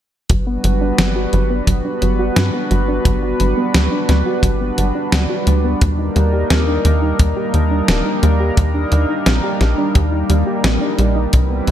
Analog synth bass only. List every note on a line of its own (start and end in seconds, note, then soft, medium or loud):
0.30 0.58 G1 loud
0.64 0.93 G1 medium
0.99 1.27 G1 medium
1.33 1.62 G1 loud
1.67 1.82 G1 loud
2.02 2.31 G1 medium
2.37 2.51 G2 medium
2.71 3.00 G1 medium
3.05 3.34 G1 loud
3.40 3.54 G1 medium
3.75 3.89 D2 medium
4.09 4.23 D2 medium
4.43 4.72 G1 loud
4.78 4.92 G1 medium
5.13 5.27 D2 medium
5.47 5.75 D2 medium
5.82 6.10 D#2 loud
6.16 6.44 D#2 loud
6.50 6.79 D#2 medium
6.85 7.13 D#2 loud
7.20 7.34 D#2 loud
7.54 7.82 D#2 medium
7.88 8.03 D#1 medium
8.23 8.51 D#2 medium
8.57 8.86 D#2 loud
8.92 9.06 D#2 medium
9.26 9.41 A#1 medium
9.61 9.75 A#1 loud
9.95 10.24 D#2 loud
10.30 10.44 D#2 medium
10.64 10.78 A#1 medium
10.99 11.27 A#1 medium
11.34 11.62 C2 loud
11.68 11.71 C2 medium